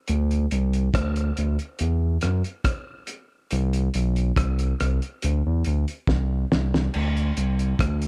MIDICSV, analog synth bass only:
0, 0, Header, 1, 2, 480
1, 0, Start_track
1, 0, Tempo, 856287
1, 46, Time_signature, 4, 2, 24, 8
1, 4527, End_track
2, 0, Start_track
2, 0, Title_t, "Analog synth bass"
2, 0, Program_c, 0, 38
2, 52, Note_on_c, 0, 38, 103
2, 259, Note_off_c, 0, 38, 0
2, 292, Note_on_c, 0, 36, 92
2, 499, Note_off_c, 0, 36, 0
2, 528, Note_on_c, 0, 38, 85
2, 737, Note_off_c, 0, 38, 0
2, 776, Note_on_c, 0, 38, 99
2, 882, Note_off_c, 0, 38, 0
2, 1013, Note_on_c, 0, 40, 91
2, 1220, Note_off_c, 0, 40, 0
2, 1255, Note_on_c, 0, 42, 93
2, 1361, Note_off_c, 0, 42, 0
2, 1975, Note_on_c, 0, 36, 116
2, 2181, Note_off_c, 0, 36, 0
2, 2215, Note_on_c, 0, 35, 96
2, 2421, Note_off_c, 0, 35, 0
2, 2450, Note_on_c, 0, 36, 75
2, 2658, Note_off_c, 0, 36, 0
2, 2700, Note_on_c, 0, 36, 83
2, 2803, Note_off_c, 0, 36, 0
2, 2937, Note_on_c, 0, 38, 94
2, 3042, Note_off_c, 0, 38, 0
2, 3064, Note_on_c, 0, 40, 90
2, 3158, Note_off_c, 0, 40, 0
2, 3177, Note_on_c, 0, 38, 91
2, 3282, Note_off_c, 0, 38, 0
2, 3408, Note_on_c, 0, 36, 101
2, 3617, Note_off_c, 0, 36, 0
2, 3659, Note_on_c, 0, 36, 88
2, 3863, Note_off_c, 0, 36, 0
2, 3899, Note_on_c, 0, 38, 115
2, 4103, Note_off_c, 0, 38, 0
2, 4135, Note_on_c, 0, 36, 89
2, 4340, Note_off_c, 0, 36, 0
2, 4372, Note_on_c, 0, 38, 89
2, 4527, Note_off_c, 0, 38, 0
2, 4527, End_track
0, 0, End_of_file